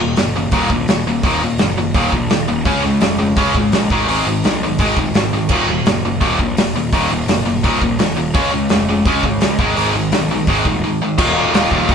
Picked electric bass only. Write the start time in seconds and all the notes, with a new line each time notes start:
0.00 D#1
0.18 F#1
0.52 D#1
0.70 A#1
0.88 D#1
1.05 D#1
1.23 D#1
1.43 D#1
1.60 F#1
1.94 D#1
2.12 A#1
2.32 D#1
2.50 D#1
2.66 C#2
2.85 C#2
3.03 F1
3.37 C#2
3.55 G#1
3.72 A#1
3.90 G#1
4.07 G#1
4.25 G#1
4.43 B1
4.79 G#1
4.97 D#1
5.14 G#1
5.32 G#1
5.50 D#1
5.67 D#1
5.85 F#1
6.21 D#1
6.39 A#1
6.57 D#1
6.73 D#1
6.93 D#1
7.10 D#1
7.27 F#1
7.64 D#1
7.81 A#1
7.99 D#1
8.17 D#1
8.35 C#2
8.52 C#2
8.70 F1
9.05 C#2
9.23 G#1
9.40 C#2
9.59 G#1
9.76 G#1
9.94 G#1
10.11 B1
10.48 G#1
10.65 D#1
11.18 D#1
11.54 D#1
11.71 D#1
11.89 D#1